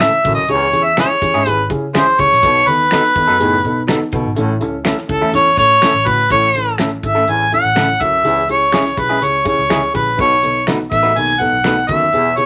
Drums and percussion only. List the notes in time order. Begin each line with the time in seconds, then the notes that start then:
0.00 finger snap, snare, closed hi-hat, high conga
0.24 kick, open hi-hat, high conga
0.48 closed hi-hat, muted conga
0.73 closed hi-hat, muted conga
0.97 finger snap, snare, closed hi-hat, high conga
1.22 kick, closed hi-hat
1.46 closed hi-hat, low conga
1.70 kick, closed hi-hat, muted conga
1.95 finger snap, snare, closed hi-hat, high conga
2.18 kick, closed hi-hat, high conga
2.32 snare
2.43 kick, closed hi-hat, muted conga
2.67 closed hi-hat, muted conga
2.91 finger snap, snare, closed hi-hat, high conga
3.04 snare
3.16 kick, closed hi-hat
3.40 closed hi-hat, muted conga
3.65 closed hi-hat, muted conga, low conga
3.88 finger snap, snare, closed hi-hat, high conga
4.12 kick, closed hi-hat, high conga
4.37 closed hi-hat, muted conga
4.61 closed hi-hat, muted conga
4.85 finger snap, snare, closed hi-hat, high conga
4.98 snare
5.09 kick, closed hi-hat
5.34 closed hi-hat, low conga
5.57 kick, closed hi-hat, muted conga
5.82 finger snap, snare, closed hi-hat, high conga
6.06 kick, closed hi-hat, high conga
6.30 kick, closed hi-hat, muted conga
6.55 closed hi-hat, muted conga
6.78 finger snap, snare, closed hi-hat, high conga
7.03 kick, closed hi-hat
7.28 closed hi-hat
7.52 closed hi-hat, muted conga, low conga
7.76 finger snap, snare, closed hi-hat, high conga
8.00 kick, closed hi-hat, high conga
8.25 closed hi-hat, muted conga
8.49 closed hi-hat, muted conga
8.72 finger snap, snare, closed hi-hat, high conga
8.86 snare
8.97 kick, closed hi-hat
9.22 closed hi-hat
9.46 kick, closed hi-hat, muted conga
9.70 finger snap, snare, closed hi-hat, high conga
9.94 kick, closed hi-hat, high conga
10.19 kick, closed hi-hat, muted conga
10.43 closed hi-hat, muted conga
10.67 finger snap, snare, closed hi-hat, high conga
10.92 kick, closed hi-hat
11.16 closed hi-hat
11.41 closed hi-hat, muted conga, low conga
11.64 finger snap, snare, closed hi-hat, high conga
11.88 kick, closed hi-hat, high conga
12.13 closed hi-hat, muted conga
12.37 closed hi-hat, muted conga